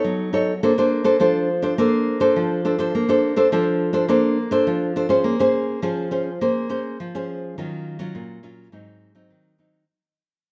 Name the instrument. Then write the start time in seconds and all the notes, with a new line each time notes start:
nylon-string guitar
Already playing: D#4 A4 C#5
0.04 F#3
0.33 D#4 A4 C#5
0.63 A#3 D4 A4 C5
0.78 D4 A4 C5
1.04 D4 A4 C5
1.20 F3 D4 A4 C5
1.62 D4 A4 C5
1.78 A#3 D4 A4 C5
2.20 D4 A4 C5
2.36 F3
2.65 D4 A4 C5
2.79 D4 A4 C5
2.95 A#3
3.09 D4 A4 C5
3.36 D4 A4 C5
3.52 F3 D4 A4 C5
3.93 D4 A4 C5
4.08 A#3 D4 A4 C5
4.51 D4 A4 C5
4.67 F3
4.96 D4 A4 C5
5.09 C#4 G#4 C5
5.24 A#3
5.39 C#4 G#4 C5
5.82 F3 C#4 G#4 C5
6.11 C#4 G#4 C5
6.41 A#3 C#4 G#4 C5
6.69 C#4 G#4 C5
7.00 F3
7.15 C#4 G#4 C5
7.58 D#3 F#3 C#4 F4
7.99 F#3 C#4 F4
8.15 A#2
8.43 F#3 C#4 F4
8.72 G#2 F#3 C4 D#4
9.15 F#3 C4 D#4
9.30 D#3
9.58 F#3 C4 D#4